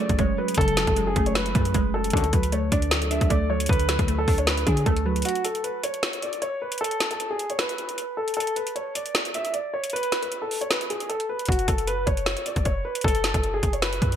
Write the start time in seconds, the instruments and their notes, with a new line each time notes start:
Already playing: synth pluck F#3 G#3, analog synth pad F#3 C#4 G#4
0.00 synth pluck A3, grand piano D5
0.09 808-style bass F#1, kick, closed hi-hat
0.19 synth pluck G#3, grand piano C#5, kick, closed hi-hat
0.38 synth pluck F#3, grand piano B4
0.48 closed hi-hat
0.54 808-style bass F#1, synth pluck C#3, grand piano A4, kick, closed hi-hat
0.61 closed hi-hat
0.68 closed hi-hat
0.77 synth pluck F#3, snare, closed hi-hat
0.87 808-style bass F#1, grand piano A4, kick, closed hi-hat
0.96 synth pluck G#3, closed hi-hat
1.07 grand piano G#4
1.16 808-style bass F#1, synth pluck A3, kick, closed hi-hat
1.26 grand piano C#5, closed hi-hat
1.35 grand piano B4, snare, closed hi-hat
1.46 closed hi-hat
1.55 808-style bass F#2, synth pluck A3, kick, closed hi-hat
1.65 closed hi-hat
1.74 808-style bass F#1, synth pluck G#3, kick, closed hi-hat
1.94 synth pluck F#3, grand piano A4
2.04 closed hi-hat
2.10 808-style bass D2, brass ensemble F#2 A2 D3, synth pluck D3, analog synth pad F#3 D4 A4, grand piano A4, kick, closed hi-hat
2.17 closed hi-hat
2.24 closed hi-hat
2.33 808-style bass D2, synth pluck F#3, grand piano B4, kick, closed hi-hat
2.43 closed hi-hat
2.52 synth pluck A3, grand piano C#5, closed hi-hat
2.72 808-style bass D2, synth pluck D4, grand piano D5, kick, closed hi-hat
2.82 closed hi-hat
2.91 snare, closed hi-hat
3.02 closed hi-hat
3.11 synth pluck D4, grand piano E5, closed hi-hat
3.21 808-style bass D2, kick, closed hi-hat
3.30 synth pluck A3, grand piano D5, kick, closed hi-hat
3.50 synth pluck F#3, grand piano C#5
3.60 closed hi-hat
3.66 808-style bass D2, synth pluck D3, grand piano B4, kick, closed hi-hat
3.73 closed hi-hat
3.79 closed hi-hat
3.89 synth pluck F#3, snare, closed hi-hat
3.99 808-style bass D2, grand piano B4, kick, closed hi-hat
4.08 synth pluck A3, closed hi-hat
4.18 grand piano A4
4.28 808-style bass D2, synth pluck D4, kick, open hi-hat
4.38 grand piano C#5, closed hi-hat
4.47 grand piano B4, snare, closed hi-hat
4.58 closed hi-hat
4.67 808-style bass D3, synth pluck D4, grand piano G#4, kick, closed hi-hat
4.77 closed hi-hat
4.86 808-style bass D2, synth pluck A3, grand piano A4, kick, closed hi-hat
4.96 closed hi-hat
5.06 synth pluck F#3, grand piano B4
5.16 closed hi-hat
5.22 grand piano F#4, closed hi-hat
5.25 closed hi-hat
5.29 closed hi-hat
5.35 closed hi-hat
5.45 grand piano A4, closed hi-hat
5.55 closed hi-hat
5.64 grand piano B4, closed hi-hat
5.83 grand piano C#5, closed hi-hat
5.94 closed hi-hat
6.03 snare, closed hi-hat
6.13 closed hi-hat
6.22 grand piano D5, closed hi-hat
6.33 closed hi-hat
6.42 grand piano C#5, closed hi-hat
6.62 grand piano B4
6.72 closed hi-hat
6.78 grand piano A4, closed hi-hat
6.84 closed hi-hat
6.91 closed hi-hat
7.00 snare, closed hi-hat
7.11 grand piano A4, closed hi-hat
7.20 closed hi-hat
7.30 grand piano G#4
7.39 closed hi-hat
7.50 grand piano C#5, closed hi-hat
7.59 grand piano B4, snare, closed hi-hat
7.69 closed hi-hat
7.78 closed hi-hat
7.89 closed hi-hat
7.98 closed hi-hat
8.17 grand piano A4
8.28 closed hi-hat
8.34 grand piano A4, closed hi-hat
8.40 closed hi-hat
8.47 closed hi-hat
8.56 grand piano B4, closed hi-hat
8.67 closed hi-hat
8.76 grand piano C#5, closed hi-hat
8.95 grand piano D5, closed hi-hat
9.06 closed hi-hat
9.15 snare, closed hi-hat
9.25 closed hi-hat
9.34 grand piano E5, closed hi-hat
9.45 closed hi-hat
9.53 grand piano D5, closed hi-hat
9.74 grand piano C#5
9.84 closed hi-hat
9.90 grand piano B4, closed hi-hat
9.96 closed hi-hat
10.03 closed hi-hat
10.12 snare, closed hi-hat
10.23 grand piano B4, closed hi-hat
10.32 closed hi-hat
10.42 grand piano A4
10.51 open hi-hat
10.61 grand piano C#5, closed hi-hat
10.71 grand piano B4, snare, closed hi-hat
10.81 closed hi-hat
10.90 grand piano G#4, closed hi-hat
11.00 closed hi-hat
11.09 grand piano A4, closed hi-hat
11.20 closed hi-hat
11.29 grand piano B4
11.39 closed hi-hat
11.45 808-style bass F#1, grand piano F#4, kick, closed hi-hat
11.52 closed hi-hat
11.59 closed hi-hat
11.68 808-style bass F#1, grand piano A4, kick, closed hi-hat
11.78 closed hi-hat
11.87 grand piano B4, closed hi-hat
12.06 808-style bass F#1, grand piano C#5, kick, closed hi-hat
12.17 closed hi-hat
12.26 snare, closed hi-hat
12.37 closed hi-hat
12.46 grand piano D5, closed hi-hat
12.56 808-style bass F#1, kick, closed hi-hat
12.65 grand piano C#5, kick, closed hi-hat
12.85 grand piano B4
12.95 closed hi-hat
13.01 808-style bass F#1, grand piano A4, kick, closed hi-hat
13.08 closed hi-hat
13.15 closed hi-hat
13.24 snare, closed hi-hat
13.34 808-style bass F#1, grand piano A4, kick, closed hi-hat
13.43 closed hi-hat
13.54 grand piano G#4
13.63 808-style bass F#1, kick, closed hi-hat
13.73 grand piano C#5, closed hi-hat
13.82 grand piano B4, snare, closed hi-hat
13.93 closed hi-hat
14.02 808-style bass F#2, kick, closed hi-hat
14.12 closed hi-hat